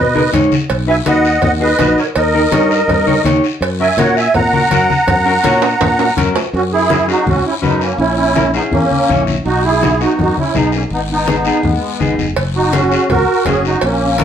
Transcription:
Already playing: B2 B4 D#5
0.15 D#4 G#4 A#4, high conga
0.33 G#2 D#4 G#4 C#5, cowbell, high conga, low conga, short guiro
0.52 high conga, short guiro
0.70 B1, cowbell, long guiro
0.87 D#4 F#4 B4 E5 G#5, high conga
1.05 D#2 D#4 F#4 B4 D#5 F#5, cowbell, high conga, short guiro
1.25 short guiro
1.42 D#2 D#5 F#5, cowbell, high conga, low conga, long guiro
1.60 D#4 F#4 G#4 B4 D#5
1.79 A#1 D#4 F#4 B4, cowbell, high conga, low timbale, short guiro
1.98 A#4 C#5, short guiro
2.16 D#2 A#4 D#5, cowbell, long guiro
2.34 D#4 G4 A#4, high conga
2.52 G2 D#4 G4 C#5, cowbell, high conga, short guiro
2.71 short guiro
2.88 G2, cowbell, high conga, low conga, long guiro
3.07 D#4 G4 C#5, high conga
3.24 D#2 D#4 G4 C#5, cowbell, high conga, short guiro
3.44 short guiro
3.61 F#2, cowbell, long guiro
3.80 C#4 F#4 A#4 E5 G#5, high conga
3.97 A#2 C#4 F#4 A#4 C#5 F#5, cowbell, high conga, short guiro
4.17 E5 G#5, short guiro
4.34 A#2 F#5 A#5, cowbell, high conga, low conga, long guiro
4.53 C#4 F#4 A#4, high conga
4.71 F#2 C#4 F#4 A#4, cowbell, high conga, short guiro
4.90 high conga, short guiro
5.07 F#2, cowbell, low conga, long guiro
5.26 C#4 F#4 A#4
5.43 A#2 C#4 F#4 C#5, cowbell, high conga, short guiro
5.62 high timbale, short guiro
5.81 A#2, cowbell, high conga, low conga, high timbale, long guiro
5.99 C#4 F#4 A#4, high timbale
6.17 F#2 C#4 F#4 A#4, cowbell, high conga, low conga, short guiro
6.36 low timbale, short guiro
6.53 F#2 C#4 F#4, long guiro
6.73 E4 G#4, high conga
6.90 C#4 F#4 G#4, high conga, short guiro
7.08 C#4 D#4 F#4 G#4, short guiro
7.26 C#2 C#4 F#4, high conga, low conga, long guiro
7.46 C#4 E4
7.62 F#2 G#3 C#4 D#4 F#4 B4, high conga, short guiro
7.81 A#3 C#4, short guiro
7.98 A#1 C#4 E4, long guiro
8.16 C#4 E4, high conga
8.36 C#4 E4 A#4, high conga, short guiro
8.54 B3 C#4 D#4 E4 G#4, short guiro
8.71 E2 A#3 C#4, high conga, low conga, long guiro
8.91 high conga
9.09 A#1 C#4 E4 C#5, high conga, low conga, short guiro
9.27 high conga, short guiro
9.45 B1 D#4 F#4, long guiro
9.64 E4 G#4, high conga
9.82 B3 D#4 F#4, high conga, short guiro
10.00 B3 D#4 F#4, short guiro
10.19 F#2 D#4 F#4, high conga, low conga, long guiro
10.38 C#4 E4, high conga
10.55 B1 B3 D#4 G#4, high conga, short guiro
10.72 A#3 C#4, short guiro
10.90 G#1 B3 D#4, long guiro
11.10 B3 D#4, high conga
11.27 B3 D#4 G#4, high conga, short guiro
11.45 B3 D#4 G#4, short guiro
11.63 D#2 G#3 B3, high conga, low conga, long guiro
12.00 G#1 B3 D#4 G#4, high conga, short guiro
12.18 F#1, high conga, short guiro
12.36 F#1, cowbell, long guiro
12.55 D#4 F#4, high conga
12.73 C#4 F#4 G#4, cowbell, high conga, short guiro
12.91 C#4 F#4 G#4, short guiro
13.09 C#2 F#4 A#4, cowbell, high conga, low conga, long guiro
13.45 F#1 C#4 F#4 G#4, cowbell, high conga, low timbale, short guiro
13.65 D#4 F#4, short guiro
13.81 A#1 A#3 C#4, cowbell, long guiro
14.01 high conga
14.18 A#3 C#4 E4 A#4, cowbell, high conga, short guiro

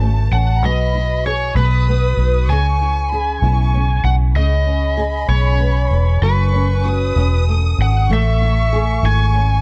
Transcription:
Already playing: G#1 C#4 F#4 A5
0.01 A3
0.32 A1 C#4 F#5
0.57 A#5
0.62 B1 B2 D#5 B5
0.95 E4
1.25 G#4 C#5 C#6
1.55 B1 B2 B4 D#6
1.88 B3
2.17 B1 D#4
2.48 C#2 C#3 G#5 C#6
2.81 E4
3.09 G#4 B5
3.40 B1 E4 C#6
3.74 C#4
4.04 B1 E4 F#5
4.34 C#2 C#3 D#5 B5
4.67 C#4
4.97 G#4
5.28 B1 C#4 C#5
5.60 B3
5.91 E1 C#4
6.22 F#1 F#2 B4 C#6
6.53 C#4
6.85 F#4 D#6
7.16 E1 C#4
7.48 A3
7.78 G#1 C#4 F#5
8.08 A1 A3 C#6
8.13 E5
8.41 E4
8.73 G#4
9.03 G#1 E4 G#5
9.34 C#4

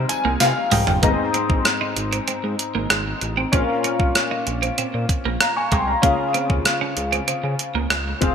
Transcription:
Already playing: D#3 G3 G#3 C4 D#4 A#4
0.09 G#5, closed hi-hat, tambourine
0.25 C2 A#3
0.40 C3 F5, snare, closed hi-hat, tambourine
0.71 C2 G#3 G5, mid tom, open hi-hat, tambourine
0.87 G1, floor tom
1.02 G#1 G#2 A#3 B3 D#4 G#4 D#5, kick, closed hi-hat
1.08 C4
1.34 C4, closed hi-hat
1.50 A#1, muted clean electric guitar stroke, kick
1.65 cross-stick, closed hi-hat
1.81 D#4
1.97 G#1, muted clean electric guitar stroke, closed hi-hat
2.13 C4, closed hi-hat
2.28 G#2 C4, closed hi-hat
2.43 G#2, muted clean electric guitar stroke
2.59 closed hi-hat
2.75 G#1 A#3
2.90 G#1 G#3, cross-stick, closed hi-hat
3.21 A1, muted clean electric guitar stroke, closed hi-hat
3.37 C4
3.52 A#1 A#2 C4 C#4 F4 A#4 F5, kick, closed hi-hat
3.84 C#4, closed hi-hat
4.00 C2, muted clean electric guitar stroke, kick
4.15 cross-stick, closed hi-hat
4.31 D#4
4.47 A#1, muted clean electric guitar stroke, closed hi-hat
4.62 C4, closed hi-hat
4.78 A#2 C4, closed hi-hat
4.94 A#2, muted clean electric guitar stroke
5.09 kick, closed hi-hat
5.25 A#1 A#3
5.40 F5 A#5, cross-stick, closed hi-hat
5.56 G#5 C#6
5.72 C2 G#3 G5 C6, kick, closed hi-hat
5.88 F5 A#5
6.02 C#2 C#3 A#3 C#4 F4 G#4 F5, kick, closed hi-hat
6.34 C4, closed hi-hat
6.50 D#2, muted clean electric guitar stroke, kick
6.65 cross-stick, closed hi-hat
6.81 C#4
6.97 C#2, muted clean electric guitar stroke, closed hi-hat
7.12 C4, closed hi-hat
7.28 C#3 C4, closed hi-hat
7.43 C#3, muted clean electric guitar stroke
7.59 closed hi-hat
7.75 C#2 A#3
7.90 C#2 G#3, cross-stick, closed hi-hat
8.21 F1 C4 F4 G#4 F5, muted clean electric guitar stroke, kick, closed hi-hat

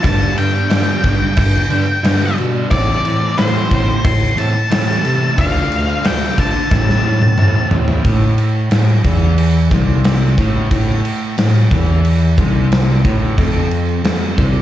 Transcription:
0.03 G2 D3 G3 B3 D4 A5, kick, cowbell, crash
0.36 G2 G5, crash
0.52 G3 B3 D4
0.69 G2 D3 G3 B3 D4, snare, cowbell, crash
1.02 G2 D3 G3 B3 D4, kick, crash
1.19 muted overdriven electric guitar stroke
1.37 G2, kick, cowbell, crash
1.70 G2 D3 G3 B3 D4, crash
1.87 muted overdriven electric guitar stroke
2.03 G2 D3 G3 B3 D4, snare, cowbell, crash
2.20 G3 B3 D4
2.36 B2 D3 G3 B3 D4, crash
2.54 G3 B3 D4
2.71 A2 E3 A3 C4 E4 D5, kick, cowbell, crash
3.03 A2, crash
3.22 A3 C4 E4
3.37 A2 E3 A3 C4 E4 C5, snare, cowbell, crash
3.70 A2 E3 A3 C4 E4, kick, crash
3.88 muted overdriven electric guitar stroke
4.04 A2 C6, kick, cowbell, crash
4.36 A2 E3 A3 C4 E4 A5, crash
4.55 muted overdriven electric guitar stroke
4.70 A2 E3 A3 C4 E4, snare, cowbell, crash
4.87 A3 C4 E4
5.03 C3 E3 A3 C4 E4, crash
5.20 A3 C4 E4
5.36 D2 D3 A3 D4 F4 F5, kick, cowbell, crash
5.71 D2, crash
5.88 A3 D4 F4
6.03 D2 D3 A3 D4 F4 G5, snare, cowbell, crash
6.37 D3 A3 D4 F4 A5, kick, crash
6.54 muted overdriven electric guitar stroke
6.70 A2 E3 A3 C4 E4, kick, snare, cowbell
6.89 snare
7.03 A2 E3 A3 C4 E4
7.22 muted overdriven electric guitar stroke, high tom
7.37 A2 E3 A3 C4 E4, mid tom, cowbell
7.54 A3 C4 E4
7.71 A2 E3 A3 C4 E4, floor tom
7.88 A3 C4 E4, floor tom
8.05 A2, kick, crash
8.38 crash
8.71 A2, snare, crash
9.04 E2 E3, kick, crash
9.38 crash
9.71 C2 C3, kick, snare, crash
10.04 snare, crash
10.38 A2, kick, crash
10.71 A2, kick, crash
11.05 crash
11.36 A2, snare, crash
11.71 E2 E3, kick, crash
12.05 crash
12.38 C2 C3, kick, crash
12.72 snare, crash
13.04 A2, kick, crash
13.38 F2, kick, cowbell, crash
13.71 crash
14.03 F2, snare, cowbell, crash
14.37 C2 C3, kick, cowbell, crash

